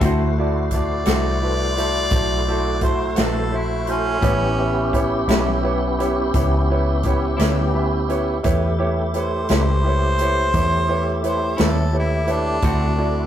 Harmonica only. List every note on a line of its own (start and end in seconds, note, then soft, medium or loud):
0.73 2.79 D5 loud
2.83 3.20 C5 medium
3.18 3.59 A4 medium
3.57 3.89 E4 medium
3.90 5.25 C#4 loud
9.18 11.22 C5 loud
11.28 11.63 C5 medium
11.61 11.94 A4 medium
11.98 12.33 E4 medium
12.32 13.27 D4 loud